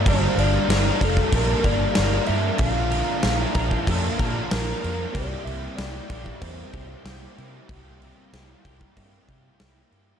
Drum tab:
CC |x-x-x-x-x-x-x-x-|x-x-x-x-x-x-x-x-|x-x-x-x-x-x-x-x-|x-x-x-x-x-x-x-x-|
SD |----o-------o---|----o-------o---|----o-------o---|----o-------o---|
BD |o-----ooo-o-----|o-----ooo-o-----|o-----ooo-o-----|o-----ooo-o-----|